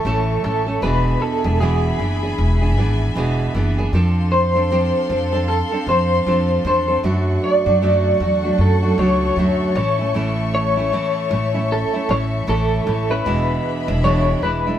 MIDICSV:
0, 0, Header, 1, 5, 480
1, 0, Start_track
1, 0, Key_signature, 3, "major"
1, 0, Tempo, 777202
1, 508, Time_signature, 4, 2, 24, 8
1, 9134, End_track
2, 0, Start_track
2, 0, Title_t, "String section"
2, 0, Program_c, 0, 48
2, 0, Note_on_c, 0, 57, 78
2, 0, Note_on_c, 0, 73, 76
2, 0, Note_on_c, 0, 76, 79
2, 0, Note_on_c, 0, 85, 80
2, 485, Note_off_c, 0, 57, 0
2, 485, Note_off_c, 0, 85, 0
2, 486, Note_off_c, 0, 76, 0
2, 487, Note_off_c, 0, 73, 0
2, 506, Note_on_c, 0, 83, 88
2, 508, Note_on_c, 0, 62, 72
2, 508, Note_on_c, 0, 76, 72
2, 509, Note_on_c, 0, 80, 83
2, 2407, Note_off_c, 0, 83, 0
2, 2408, Note_off_c, 0, 76, 0
2, 2409, Note_off_c, 0, 80, 0
2, 2423, Note_on_c, 0, 77, 72
2, 2426, Note_on_c, 0, 84, 86
2, 2427, Note_on_c, 0, 69, 81
2, 4325, Note_off_c, 0, 77, 0
2, 4327, Note_off_c, 0, 69, 0
2, 4327, Note_off_c, 0, 84, 0
2, 4347, Note_on_c, 0, 78, 70
2, 4347, Note_on_c, 0, 85, 87
2, 4348, Note_on_c, 0, 69, 80
2, 6001, Note_off_c, 0, 62, 0
2, 6010, Note_off_c, 0, 78, 0
2, 6029, Note_on_c, 0, 73, 76
2, 6030, Note_on_c, 0, 76, 76
2, 8162, Note_off_c, 0, 69, 0
2, 8162, Note_off_c, 0, 85, 0
2, 8166, Note_off_c, 0, 73, 0
2, 8188, Note_on_c, 0, 68, 76
2, 8191, Note_on_c, 0, 62, 70
2, 8193, Note_on_c, 0, 83, 87
2, 9124, Note_off_c, 0, 76, 0
2, 9134, Note_off_c, 0, 62, 0
2, 9134, Note_off_c, 0, 68, 0
2, 9134, Note_off_c, 0, 83, 0
2, 9134, End_track
3, 0, Start_track
3, 0, Title_t, "Clean electric guitar"
3, 0, Program_c, 1, 27
3, 0, Note_on_c, 1, 69, 93
3, 268, Note_off_c, 1, 69, 0
3, 275, Note_on_c, 1, 69, 87
3, 510, Note_off_c, 1, 69, 0
3, 512, Note_on_c, 1, 71, 99
3, 750, Note_off_c, 1, 71, 0
3, 753, Note_on_c, 1, 69, 87
3, 988, Note_off_c, 1, 69, 0
3, 991, Note_on_c, 1, 68, 75
3, 1924, Note_off_c, 1, 68, 0
3, 2667, Note_on_c, 1, 72, 120
3, 3384, Note_off_c, 1, 72, 0
3, 3387, Note_on_c, 1, 69, 103
3, 3634, Note_off_c, 1, 69, 0
3, 3637, Note_on_c, 1, 72, 100
3, 4113, Note_off_c, 1, 72, 0
3, 4120, Note_on_c, 1, 72, 82
3, 4337, Note_off_c, 1, 72, 0
3, 4594, Note_on_c, 1, 74, 116
3, 5318, Note_on_c, 1, 69, 91
3, 5332, Note_off_c, 1, 74, 0
3, 5552, Note_on_c, 1, 73, 101
3, 5559, Note_off_c, 1, 69, 0
3, 6025, Note_off_c, 1, 73, 0
3, 6032, Note_on_c, 1, 73, 82
3, 6253, Note_off_c, 1, 73, 0
3, 6513, Note_on_c, 1, 73, 116
3, 7240, Note_on_c, 1, 69, 102
3, 7251, Note_off_c, 1, 73, 0
3, 7477, Note_on_c, 1, 73, 93
3, 7480, Note_off_c, 1, 69, 0
3, 7541, Note_off_c, 1, 73, 0
3, 7716, Note_on_c, 1, 69, 93
3, 8096, Note_on_c, 1, 71, 97
3, 8107, Note_off_c, 1, 69, 0
3, 8670, Note_off_c, 1, 71, 0
3, 8672, Note_on_c, 1, 73, 93
3, 8909, Note_off_c, 1, 73, 0
3, 8912, Note_on_c, 1, 71, 87
3, 9134, Note_off_c, 1, 71, 0
3, 9134, End_track
4, 0, Start_track
4, 0, Title_t, "Nylon-string guitar"
4, 0, Program_c, 2, 24
4, 30, Note_on_c, 2, 45, 76
4, 33, Note_on_c, 2, 52, 77
4, 36, Note_on_c, 2, 57, 80
4, 38, Note_on_c, 2, 61, 84
4, 41, Note_on_c, 2, 69, 91
4, 261, Note_off_c, 2, 52, 0
4, 267, Note_off_c, 2, 57, 0
4, 268, Note_on_c, 2, 52, 63
4, 269, Note_off_c, 2, 45, 0
4, 273, Note_off_c, 2, 61, 0
4, 274, Note_on_c, 2, 57, 72
4, 275, Note_off_c, 2, 69, 0
4, 280, Note_on_c, 2, 61, 67
4, 284, Note_on_c, 2, 69, 66
4, 403, Note_off_c, 2, 69, 0
4, 410, Note_on_c, 2, 69, 56
4, 411, Note_off_c, 2, 61, 0
4, 412, Note_off_c, 2, 52, 0
4, 415, Note_off_c, 2, 57, 0
4, 418, Note_on_c, 2, 61, 54
4, 424, Note_on_c, 2, 57, 41
4, 507, Note_off_c, 2, 69, 0
4, 509, Note_on_c, 2, 40, 73
4, 511, Note_off_c, 2, 61, 0
4, 512, Note_on_c, 2, 47, 83
4, 513, Note_off_c, 2, 57, 0
4, 514, Note_on_c, 2, 52, 81
4, 515, Note_on_c, 2, 59, 87
4, 516, Note_on_c, 2, 62, 82
4, 518, Note_on_c, 2, 68, 76
4, 885, Note_off_c, 2, 68, 0
4, 891, Note_off_c, 2, 62, 0
4, 892, Note_off_c, 2, 40, 0
4, 893, Note_on_c, 2, 68, 52
4, 894, Note_off_c, 2, 47, 0
4, 895, Note_off_c, 2, 52, 0
4, 896, Note_off_c, 2, 59, 0
4, 898, Note_on_c, 2, 62, 53
4, 903, Note_on_c, 2, 59, 47
4, 907, Note_on_c, 2, 52, 47
4, 989, Note_off_c, 2, 68, 0
4, 990, Note_off_c, 2, 52, 0
4, 991, Note_off_c, 2, 62, 0
4, 993, Note_off_c, 2, 59, 0
4, 994, Note_on_c, 2, 40, 78
4, 996, Note_on_c, 2, 47, 78
4, 997, Note_on_c, 2, 52, 79
4, 1002, Note_on_c, 2, 59, 84
4, 1003, Note_on_c, 2, 62, 87
4, 1004, Note_on_c, 2, 68, 92
4, 1224, Note_off_c, 2, 52, 0
4, 1229, Note_off_c, 2, 59, 0
4, 1231, Note_off_c, 2, 40, 0
4, 1232, Note_off_c, 2, 47, 0
4, 1232, Note_on_c, 2, 52, 58
4, 1235, Note_off_c, 2, 62, 0
4, 1236, Note_off_c, 2, 68, 0
4, 1236, Note_on_c, 2, 59, 53
4, 1244, Note_on_c, 2, 62, 58
4, 1247, Note_on_c, 2, 68, 65
4, 1369, Note_off_c, 2, 68, 0
4, 1374, Note_off_c, 2, 52, 0
4, 1376, Note_off_c, 2, 59, 0
4, 1376, Note_on_c, 2, 68, 55
4, 1377, Note_off_c, 2, 62, 0
4, 1384, Note_on_c, 2, 62, 47
4, 1387, Note_on_c, 2, 59, 45
4, 1390, Note_on_c, 2, 52, 43
4, 1606, Note_off_c, 2, 68, 0
4, 1612, Note_off_c, 2, 62, 0
4, 1613, Note_on_c, 2, 68, 59
4, 1617, Note_off_c, 2, 59, 0
4, 1619, Note_off_c, 2, 52, 0
4, 1620, Note_on_c, 2, 62, 53
4, 1624, Note_on_c, 2, 59, 59
4, 1626, Note_on_c, 2, 52, 53
4, 1704, Note_off_c, 2, 52, 0
4, 1709, Note_off_c, 2, 68, 0
4, 1710, Note_off_c, 2, 59, 0
4, 1711, Note_on_c, 2, 52, 68
4, 1712, Note_off_c, 2, 62, 0
4, 1718, Note_on_c, 2, 59, 79
4, 1722, Note_on_c, 2, 62, 71
4, 1725, Note_on_c, 2, 68, 80
4, 1950, Note_off_c, 2, 52, 0
4, 1951, Note_off_c, 2, 59, 0
4, 1953, Note_off_c, 2, 62, 0
4, 1954, Note_on_c, 2, 40, 92
4, 1955, Note_on_c, 2, 47, 98
4, 1956, Note_off_c, 2, 68, 0
4, 1956, Note_on_c, 2, 52, 82
4, 1958, Note_on_c, 2, 59, 89
4, 1960, Note_on_c, 2, 62, 90
4, 1963, Note_on_c, 2, 68, 95
4, 2183, Note_off_c, 2, 52, 0
4, 2189, Note_off_c, 2, 59, 0
4, 2191, Note_off_c, 2, 40, 0
4, 2191, Note_off_c, 2, 47, 0
4, 2191, Note_on_c, 2, 52, 74
4, 2194, Note_off_c, 2, 62, 0
4, 2195, Note_off_c, 2, 68, 0
4, 2196, Note_on_c, 2, 59, 67
4, 2201, Note_on_c, 2, 62, 79
4, 2206, Note_on_c, 2, 68, 76
4, 2328, Note_off_c, 2, 68, 0
4, 2333, Note_off_c, 2, 52, 0
4, 2334, Note_off_c, 2, 62, 0
4, 2336, Note_off_c, 2, 59, 0
4, 2336, Note_on_c, 2, 68, 61
4, 2342, Note_on_c, 2, 62, 52
4, 2346, Note_on_c, 2, 59, 49
4, 2352, Note_on_c, 2, 52, 41
4, 2428, Note_off_c, 2, 52, 0
4, 2428, Note_off_c, 2, 62, 0
4, 2430, Note_off_c, 2, 68, 0
4, 2431, Note_off_c, 2, 59, 0
4, 2431, Note_on_c, 2, 53, 78
4, 2433, Note_on_c, 2, 60, 82
4, 2435, Note_on_c, 2, 62, 90
4, 2438, Note_on_c, 2, 69, 100
4, 2805, Note_off_c, 2, 69, 0
4, 2810, Note_off_c, 2, 62, 0
4, 2812, Note_on_c, 2, 69, 54
4, 2813, Note_off_c, 2, 53, 0
4, 2814, Note_off_c, 2, 60, 0
4, 2818, Note_on_c, 2, 62, 51
4, 2825, Note_on_c, 2, 60, 44
4, 2906, Note_off_c, 2, 60, 0
4, 2907, Note_on_c, 2, 53, 73
4, 2908, Note_off_c, 2, 69, 0
4, 2909, Note_off_c, 2, 62, 0
4, 2913, Note_on_c, 2, 60, 85
4, 2916, Note_on_c, 2, 62, 88
4, 2918, Note_on_c, 2, 69, 88
4, 3140, Note_off_c, 2, 53, 0
4, 3142, Note_off_c, 2, 60, 0
4, 3147, Note_on_c, 2, 53, 54
4, 3150, Note_on_c, 2, 60, 58
4, 3152, Note_off_c, 2, 62, 0
4, 3153, Note_off_c, 2, 69, 0
4, 3158, Note_on_c, 2, 62, 62
4, 3161, Note_on_c, 2, 69, 57
4, 3281, Note_off_c, 2, 69, 0
4, 3289, Note_on_c, 2, 69, 58
4, 3291, Note_off_c, 2, 53, 0
4, 3291, Note_off_c, 2, 62, 0
4, 3292, Note_off_c, 2, 60, 0
4, 3298, Note_on_c, 2, 62, 45
4, 3304, Note_on_c, 2, 60, 41
4, 3524, Note_off_c, 2, 69, 0
4, 3531, Note_on_c, 2, 69, 54
4, 3533, Note_off_c, 2, 62, 0
4, 3538, Note_off_c, 2, 60, 0
4, 3540, Note_on_c, 2, 62, 53
4, 3547, Note_on_c, 2, 60, 47
4, 3627, Note_off_c, 2, 60, 0
4, 3627, Note_off_c, 2, 69, 0
4, 3628, Note_on_c, 2, 53, 57
4, 3632, Note_off_c, 2, 62, 0
4, 3635, Note_on_c, 2, 60, 69
4, 3638, Note_on_c, 2, 62, 63
4, 3643, Note_on_c, 2, 69, 70
4, 3862, Note_off_c, 2, 53, 0
4, 3867, Note_off_c, 2, 60, 0
4, 3868, Note_off_c, 2, 62, 0
4, 3870, Note_on_c, 2, 53, 79
4, 3873, Note_off_c, 2, 69, 0
4, 3874, Note_on_c, 2, 60, 83
4, 3876, Note_on_c, 2, 62, 81
4, 3881, Note_on_c, 2, 69, 83
4, 4098, Note_off_c, 2, 53, 0
4, 4103, Note_off_c, 2, 60, 0
4, 4105, Note_on_c, 2, 53, 67
4, 4108, Note_off_c, 2, 62, 0
4, 4110, Note_on_c, 2, 60, 67
4, 4114, Note_off_c, 2, 69, 0
4, 4116, Note_on_c, 2, 62, 73
4, 4121, Note_on_c, 2, 69, 75
4, 4241, Note_off_c, 2, 69, 0
4, 4249, Note_on_c, 2, 69, 58
4, 4250, Note_off_c, 2, 53, 0
4, 4250, Note_off_c, 2, 62, 0
4, 4252, Note_off_c, 2, 60, 0
4, 4258, Note_on_c, 2, 62, 46
4, 4262, Note_on_c, 2, 60, 43
4, 4344, Note_on_c, 2, 42, 88
4, 4345, Note_off_c, 2, 62, 0
4, 4346, Note_off_c, 2, 69, 0
4, 4347, Note_off_c, 2, 60, 0
4, 4348, Note_on_c, 2, 54, 78
4, 4349, Note_on_c, 2, 57, 84
4, 4353, Note_on_c, 2, 62, 91
4, 4355, Note_on_c, 2, 66, 84
4, 4723, Note_off_c, 2, 66, 0
4, 4727, Note_off_c, 2, 62, 0
4, 4729, Note_off_c, 2, 42, 0
4, 4730, Note_on_c, 2, 66, 57
4, 4731, Note_off_c, 2, 54, 0
4, 4732, Note_off_c, 2, 57, 0
4, 4734, Note_on_c, 2, 62, 56
4, 4741, Note_on_c, 2, 57, 51
4, 4743, Note_on_c, 2, 54, 49
4, 4824, Note_off_c, 2, 54, 0
4, 4825, Note_off_c, 2, 57, 0
4, 4826, Note_off_c, 2, 66, 0
4, 4826, Note_on_c, 2, 42, 76
4, 4827, Note_off_c, 2, 62, 0
4, 4831, Note_on_c, 2, 54, 84
4, 4833, Note_on_c, 2, 57, 86
4, 4834, Note_on_c, 2, 62, 85
4, 4835, Note_on_c, 2, 66, 90
4, 5057, Note_off_c, 2, 54, 0
4, 5063, Note_off_c, 2, 57, 0
4, 5064, Note_on_c, 2, 54, 52
4, 5066, Note_off_c, 2, 42, 0
4, 5068, Note_off_c, 2, 62, 0
4, 5070, Note_on_c, 2, 57, 60
4, 5071, Note_off_c, 2, 66, 0
4, 5075, Note_on_c, 2, 62, 54
4, 5080, Note_on_c, 2, 66, 65
4, 5202, Note_off_c, 2, 66, 0
4, 5209, Note_off_c, 2, 54, 0
4, 5209, Note_off_c, 2, 62, 0
4, 5210, Note_on_c, 2, 66, 50
4, 5212, Note_off_c, 2, 57, 0
4, 5216, Note_on_c, 2, 62, 51
4, 5220, Note_on_c, 2, 57, 52
4, 5225, Note_on_c, 2, 54, 47
4, 5444, Note_off_c, 2, 66, 0
4, 5450, Note_off_c, 2, 62, 0
4, 5451, Note_on_c, 2, 66, 59
4, 5455, Note_off_c, 2, 57, 0
4, 5458, Note_off_c, 2, 54, 0
4, 5458, Note_on_c, 2, 62, 54
4, 5462, Note_on_c, 2, 57, 48
4, 5465, Note_on_c, 2, 54, 46
4, 5542, Note_off_c, 2, 54, 0
4, 5547, Note_off_c, 2, 57, 0
4, 5547, Note_off_c, 2, 66, 0
4, 5550, Note_off_c, 2, 62, 0
4, 5550, Note_on_c, 2, 54, 63
4, 5554, Note_on_c, 2, 57, 64
4, 5558, Note_on_c, 2, 62, 67
4, 5563, Note_on_c, 2, 66, 71
4, 5788, Note_off_c, 2, 54, 0
4, 5788, Note_off_c, 2, 57, 0
4, 5788, Note_on_c, 2, 42, 82
4, 5790, Note_off_c, 2, 62, 0
4, 5793, Note_off_c, 2, 66, 0
4, 5795, Note_on_c, 2, 54, 80
4, 5795, Note_on_c, 2, 57, 85
4, 5797, Note_on_c, 2, 62, 83
4, 5800, Note_on_c, 2, 66, 80
4, 6025, Note_off_c, 2, 54, 0
4, 6026, Note_off_c, 2, 57, 0
4, 6027, Note_off_c, 2, 42, 0
4, 6028, Note_on_c, 2, 52, 68
4, 6032, Note_off_c, 2, 62, 0
4, 6033, Note_off_c, 2, 66, 0
4, 6033, Note_on_c, 2, 57, 64
4, 6039, Note_on_c, 2, 61, 76
4, 6042, Note_on_c, 2, 64, 69
4, 6161, Note_off_c, 2, 64, 0
4, 6168, Note_on_c, 2, 64, 55
4, 6171, Note_off_c, 2, 52, 0
4, 6172, Note_off_c, 2, 61, 0
4, 6174, Note_off_c, 2, 57, 0
4, 6179, Note_on_c, 2, 61, 47
4, 6185, Note_on_c, 2, 57, 46
4, 6262, Note_off_c, 2, 57, 0
4, 6264, Note_on_c, 2, 45, 81
4, 6265, Note_off_c, 2, 61, 0
4, 6265, Note_off_c, 2, 64, 0
4, 6265, Note_on_c, 2, 52, 78
4, 6270, Note_on_c, 2, 57, 83
4, 6272, Note_on_c, 2, 61, 92
4, 6274, Note_on_c, 2, 64, 93
4, 6643, Note_off_c, 2, 64, 0
4, 6649, Note_off_c, 2, 45, 0
4, 6650, Note_off_c, 2, 52, 0
4, 6651, Note_on_c, 2, 64, 53
4, 6652, Note_off_c, 2, 57, 0
4, 6653, Note_off_c, 2, 61, 0
4, 6660, Note_on_c, 2, 61, 51
4, 6664, Note_on_c, 2, 57, 43
4, 6745, Note_off_c, 2, 57, 0
4, 6746, Note_off_c, 2, 64, 0
4, 6747, Note_on_c, 2, 45, 78
4, 6748, Note_off_c, 2, 61, 0
4, 6750, Note_on_c, 2, 52, 83
4, 6752, Note_on_c, 2, 57, 82
4, 6755, Note_on_c, 2, 61, 88
4, 6757, Note_on_c, 2, 64, 85
4, 6978, Note_off_c, 2, 52, 0
4, 6984, Note_off_c, 2, 57, 0
4, 6986, Note_on_c, 2, 52, 61
4, 6987, Note_off_c, 2, 45, 0
4, 6989, Note_off_c, 2, 61, 0
4, 6991, Note_off_c, 2, 64, 0
4, 6991, Note_on_c, 2, 57, 61
4, 6996, Note_on_c, 2, 61, 64
4, 7001, Note_on_c, 2, 64, 69
4, 7122, Note_off_c, 2, 64, 0
4, 7127, Note_off_c, 2, 61, 0
4, 7129, Note_on_c, 2, 64, 52
4, 7130, Note_off_c, 2, 52, 0
4, 7133, Note_off_c, 2, 57, 0
4, 7135, Note_on_c, 2, 61, 45
4, 7142, Note_on_c, 2, 57, 46
4, 7363, Note_off_c, 2, 64, 0
4, 7368, Note_off_c, 2, 61, 0
4, 7371, Note_on_c, 2, 64, 53
4, 7376, Note_off_c, 2, 57, 0
4, 7376, Note_on_c, 2, 61, 50
4, 7384, Note_on_c, 2, 57, 50
4, 7463, Note_off_c, 2, 57, 0
4, 7465, Note_on_c, 2, 52, 62
4, 7467, Note_off_c, 2, 61, 0
4, 7467, Note_off_c, 2, 64, 0
4, 7471, Note_on_c, 2, 57, 58
4, 7475, Note_on_c, 2, 61, 67
4, 7477, Note_on_c, 2, 64, 73
4, 7698, Note_off_c, 2, 52, 0
4, 7700, Note_off_c, 2, 57, 0
4, 7702, Note_off_c, 2, 61, 0
4, 7702, Note_on_c, 2, 45, 85
4, 7705, Note_off_c, 2, 64, 0
4, 7705, Note_on_c, 2, 52, 82
4, 7707, Note_on_c, 2, 57, 87
4, 7710, Note_on_c, 2, 61, 84
4, 7712, Note_on_c, 2, 64, 86
4, 7937, Note_off_c, 2, 52, 0
4, 7941, Note_off_c, 2, 57, 0
4, 7944, Note_off_c, 2, 45, 0
4, 7944, Note_on_c, 2, 52, 70
4, 7946, Note_off_c, 2, 61, 0
4, 7948, Note_on_c, 2, 57, 65
4, 7949, Note_off_c, 2, 64, 0
4, 7953, Note_on_c, 2, 61, 70
4, 7957, Note_on_c, 2, 64, 69
4, 8083, Note_off_c, 2, 64, 0
4, 8089, Note_off_c, 2, 52, 0
4, 8090, Note_on_c, 2, 64, 58
4, 8091, Note_off_c, 2, 57, 0
4, 8091, Note_off_c, 2, 61, 0
4, 8099, Note_on_c, 2, 61, 51
4, 8104, Note_on_c, 2, 57, 42
4, 8184, Note_on_c, 2, 40, 81
4, 8186, Note_off_c, 2, 64, 0
4, 8189, Note_off_c, 2, 57, 0
4, 8189, Note_on_c, 2, 47, 86
4, 8190, Note_off_c, 2, 61, 0
4, 8190, Note_on_c, 2, 52, 77
4, 8191, Note_on_c, 2, 56, 87
4, 8196, Note_on_c, 2, 62, 89
4, 8197, Note_on_c, 2, 64, 84
4, 8562, Note_off_c, 2, 64, 0
4, 8568, Note_off_c, 2, 62, 0
4, 8569, Note_off_c, 2, 40, 0
4, 8569, Note_on_c, 2, 64, 51
4, 8572, Note_off_c, 2, 47, 0
4, 8572, Note_off_c, 2, 52, 0
4, 8573, Note_off_c, 2, 56, 0
4, 8575, Note_on_c, 2, 62, 55
4, 8580, Note_on_c, 2, 56, 50
4, 8584, Note_on_c, 2, 52, 45
4, 8665, Note_off_c, 2, 52, 0
4, 8666, Note_off_c, 2, 64, 0
4, 8669, Note_off_c, 2, 62, 0
4, 8669, Note_on_c, 2, 40, 73
4, 8670, Note_off_c, 2, 56, 0
4, 8672, Note_on_c, 2, 47, 83
4, 8673, Note_on_c, 2, 52, 79
4, 8677, Note_on_c, 2, 56, 80
4, 8677, Note_on_c, 2, 62, 91
4, 8681, Note_on_c, 2, 64, 79
4, 8902, Note_off_c, 2, 52, 0
4, 8907, Note_off_c, 2, 56, 0
4, 8908, Note_off_c, 2, 40, 0
4, 8909, Note_off_c, 2, 47, 0
4, 8909, Note_on_c, 2, 52, 59
4, 8912, Note_off_c, 2, 62, 0
4, 8914, Note_off_c, 2, 64, 0
4, 8914, Note_on_c, 2, 56, 58
4, 8919, Note_on_c, 2, 62, 56
4, 8922, Note_on_c, 2, 64, 63
4, 9051, Note_off_c, 2, 64, 0
4, 9052, Note_off_c, 2, 52, 0
4, 9055, Note_off_c, 2, 56, 0
4, 9057, Note_off_c, 2, 62, 0
4, 9059, Note_on_c, 2, 64, 57
4, 9064, Note_on_c, 2, 62, 50
4, 9071, Note_on_c, 2, 56, 45
4, 9073, Note_on_c, 2, 52, 42
4, 9134, Note_off_c, 2, 52, 0
4, 9134, Note_off_c, 2, 56, 0
4, 9134, Note_off_c, 2, 62, 0
4, 9134, Note_off_c, 2, 64, 0
4, 9134, End_track
5, 0, Start_track
5, 0, Title_t, "Upright bass"
5, 0, Program_c, 3, 32
5, 31, Note_on_c, 3, 33, 90
5, 227, Note_off_c, 3, 33, 0
5, 272, Note_on_c, 3, 33, 96
5, 468, Note_off_c, 3, 33, 0
5, 508, Note_on_c, 3, 28, 100
5, 705, Note_off_c, 3, 28, 0
5, 891, Note_on_c, 3, 28, 103
5, 1167, Note_off_c, 3, 28, 0
5, 1232, Note_on_c, 3, 30, 85
5, 1427, Note_off_c, 3, 30, 0
5, 1472, Note_on_c, 3, 28, 103
5, 1707, Note_off_c, 3, 28, 0
5, 1707, Note_on_c, 3, 32, 95
5, 1904, Note_off_c, 3, 32, 0
5, 1948, Note_on_c, 3, 28, 91
5, 2145, Note_off_c, 3, 28, 0
5, 2188, Note_on_c, 3, 30, 88
5, 2385, Note_off_c, 3, 30, 0
5, 2426, Note_on_c, 3, 41, 92
5, 3026, Note_off_c, 3, 41, 0
5, 3148, Note_on_c, 3, 41, 96
5, 3462, Note_off_c, 3, 41, 0
5, 3624, Note_on_c, 3, 41, 93
5, 3822, Note_off_c, 3, 41, 0
5, 3869, Note_on_c, 3, 41, 88
5, 4065, Note_off_c, 3, 41, 0
5, 4105, Note_on_c, 3, 40, 100
5, 4303, Note_off_c, 3, 40, 0
5, 4348, Note_on_c, 3, 42, 96
5, 4544, Note_off_c, 3, 42, 0
5, 4731, Note_on_c, 3, 42, 91
5, 5007, Note_off_c, 3, 42, 0
5, 5066, Note_on_c, 3, 40, 90
5, 5263, Note_off_c, 3, 40, 0
5, 5303, Note_on_c, 3, 42, 91
5, 5501, Note_off_c, 3, 42, 0
5, 5545, Note_on_c, 3, 37, 96
5, 5742, Note_off_c, 3, 37, 0
5, 5781, Note_on_c, 3, 38, 91
5, 5980, Note_off_c, 3, 38, 0
5, 6024, Note_on_c, 3, 33, 101
5, 6733, Note_off_c, 3, 33, 0
5, 6984, Note_on_c, 3, 33, 109
5, 7300, Note_off_c, 3, 33, 0
5, 7467, Note_on_c, 3, 33, 107
5, 7663, Note_off_c, 3, 33, 0
5, 7705, Note_on_c, 3, 33, 94
5, 7903, Note_off_c, 3, 33, 0
5, 7947, Note_on_c, 3, 33, 96
5, 8143, Note_off_c, 3, 33, 0
5, 8190, Note_on_c, 3, 28, 100
5, 8385, Note_off_c, 3, 28, 0
5, 8573, Note_on_c, 3, 28, 108
5, 8848, Note_off_c, 3, 28, 0
5, 8908, Note_on_c, 3, 28, 84
5, 9104, Note_off_c, 3, 28, 0
5, 9134, End_track
0, 0, End_of_file